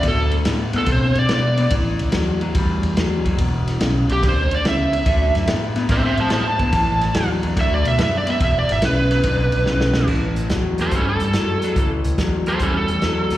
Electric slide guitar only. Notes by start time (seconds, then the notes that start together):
0.08 A4
0.78 A4
0.92 C5
1.19 D5
1.33 D5
4.12 G4
4.28 C5
4.55 D5
4.69 E5
5.92 C5 E5
6.06 C5 E5
6.20 C5 A5
6.33 C5 A5
6.48 A5
7.61 E5
7.74 D5
7.88 E5
8.03 E5
8.18 D5
8.30 E5
8.44 E5
8.59 D5
8.72 E5
8.85 B4
10.81 A4 C5
10.95 C#4 A4
11.09 A4
12.48 A4 C5
12.62 C#4 A4
12.77 A4